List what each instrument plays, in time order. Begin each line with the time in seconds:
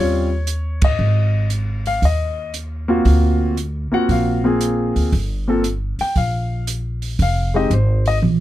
Already playing: upright bass D#2, grand piano G3 C4 C#4 F4 C#5
0.47 closed hi-hat
0.82 grand piano D#5, kick, ride
0.99 upright bass G#1
1.50 closed hi-hat
1.86 grand piano F5, open hi-hat
2.02 upright bass D#2, grand piano D#5, kick, open hi-hat
2.54 closed hi-hat
2.88 grand piano A#3 C4 F4 F#4
3.05 upright bass D2, kick, open hi-hat
3.57 closed hi-hat
3.92 grand piano A#3 C4 F4 F#4 F#5, muted upright bass stroke
4.09 upright bass A#1, grand piano F5, kick, open hi-hat
4.44 grand piano A#3 C4 F4 G#4
4.61 closed hi-hat
4.96 upright bass D2, open hi-hat
5.12 upright bass G1, kick, open hi-hat
5.48 grand piano A#3 C4 F4 A4
5.64 closed hi-hat
5.99 grand piano G5, muted upright bass stroke, open hi-hat
6.16 upright bass A#1, grand piano F5, kick, open hi-hat
6.67 closed hi-hat
7.02 open hi-hat
7.19 upright bass F1, grand piano F5, kick, open hi-hat
7.54 grand piano G#3 C4 D#4 G4 D#5
7.70 upright bass G#1, grand piano C5, closed hi-hat
8.06 grand piano D#5, open hi-hat
8.22 upright bass A#1, mid tom